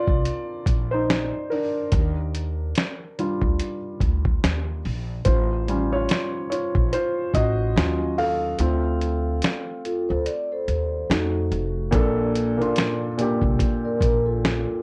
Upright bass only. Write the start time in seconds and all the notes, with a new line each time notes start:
0.08 C2
0.67 A#1
1.93 D#2
3.42 D2
4.01 D2
4.44 D#2
4.85 A#1
5.27 A1
6.76 A#1
7.34 A1
7.76 D#2
8.60 D2
10.10 D2
10.68 D#2
11.10 F2
11.51 F1
11.93 A#1
13.42 C2
14.01 A#1